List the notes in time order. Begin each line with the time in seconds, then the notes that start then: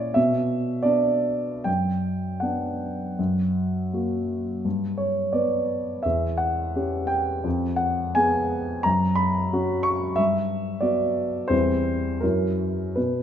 Already playing: A#2 C#4 E4 C#5 D5
0.14 B2 E5
0.83 B3 D4 D5
1.64 F#2 G5
2.40 B3 D4 F#5
3.19 F#2
3.93 A#3 F#4
4.65 G2
4.98 C#5
5.33 B3 B4 D5
6.03 E2 E5
6.38 F#5
6.76 C#4 G4
7.07 G5
7.44 F2
7.76 F#5
8.15 B3 G#4 G#5
8.83 F#2 A#5
9.15 B5
9.53 C#4 F#4
9.83 C#6
10.16 G2 E5
10.81 B3 F#4 D5
11.48 E2 G3 C4 E4 C5
12.20 F#2 F#3 C#4 E4 A#4
12.96 B2 B4